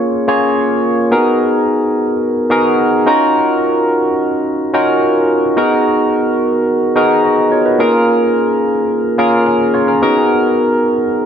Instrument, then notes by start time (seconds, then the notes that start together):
tine electric piano
Already playing: A#3 C#4 F4 G#4 C#5
0.28 A#3 C#4 F4 G#4 C#5
1.11 B3 D#4 F#4 G#4 A#4
2.50 B3 D#4 F#4 G#4 A#4
3.06 C#4 D#4 F4 F#4 A#4
4.73 C#4 D#4 F4 F#4 A#4
5.57 B3 D#4 F#4 G#4 A#4
6.95 B3 D#4 F#4 G#4 A#4
7.24 F#4 D#5
7.52 F4 C#5
7.65 D#4 B4
7.79 A#3 C#4 F4 G#4 A#4
9.18 A#3 C#4 F4 G#4 A#4
9.46 C#4 A#4
9.74 F4 C#5
9.88 C#4 A#4
10.02 B3 D#4 F#4 G#4 A#4